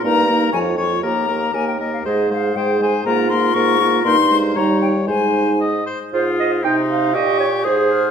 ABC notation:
X:1
M:2/4
L:1/16
Q:1/4=119
K:Ab
V:1 name="Flute"
b4 a2 d'2 | b4 a g e f | e2 f2 g2 a2 | b2 c'2 d'4 |
c'3 z b2 g2 | a4 z4 | e'4 c'4 | d'4 e'2 f'2 |]
V:2 name="Oboe"
B2 B2 d2 d2 | B2 B2 B2 B2 | c2 c2 c2 c2 | B2 B2 B2 B2 |
B2 c2 d4 | c4 e2 c2 | F4 E4 | G4 A4 |]
V:3 name="Clarinet"
E2 E2 F2 F2 | G2 G2 G2 G2 | A2 A2 A2 A2 | F2 F2 F2 F2 |
E4 E4 | E6 z2 | c2 e2 g2 f2 | e2 d2 c4 |]
V:4 name="French horn"
B,2 B,2 F,2 F,2 | B,2 B,2 B,2 B,2 | A,2 A,2 A,2 A,2 | B,2 B,2 B,2 B,2 |
B,2 A,2 G,4 | A,6 z2 | F4 E4 | G4 A4 |]
V:5 name="Bassoon" clef=bass
G,,4 F,,4 | E,,4 E,,4 | A,,4 A,,4 | A,,4 A,,4 |
G,,4 E,,4 | A,,6 z2 | A,,4 C,4 | B,,4 A,,4 |]